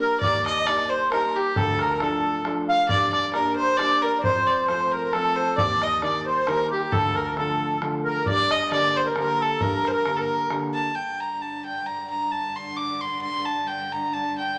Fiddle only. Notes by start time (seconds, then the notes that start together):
0.00 A#4
0.20 D5
0.46 D#5
0.67 D5
0.90 C5
1.12 A#4
1.36 G4
1.57 A4
1.81 A#4
2.03 A4
2.70 F5
2.89 D5
3.13 D5
3.33 A#4
3.56 C5
3.77 D5
4.02 A#4
4.23 C5
4.47 D5
4.68 C5
4.92 A#4
5.13 A4
5.36 C5
5.58 D5
5.83 D#5
6.03 D5
6.27 C5
6.49 A#4
6.72 G4
6.92 A4
7.17 A#4
7.39 A4
8.09 A#4
8.29 D5
8.52 D#5
8.72 D5
8.97 C5
9.08 A#4
9.19 A#4
9.42 A4
9.61 A#4
9.88 A#4 C5
10.16 A4
10.22 A#4
10.74 A5
10.96 G5
11.21 A#5
11.42 A5
11.65 G5
11.86 A#5
12.10 A#5
12.32 A5
12.56 C6
12.77 D6
13.01 C6
13.22 C6
13.45 A5
13.67 G5
13.93 A#5
14.13 A5
14.38 G5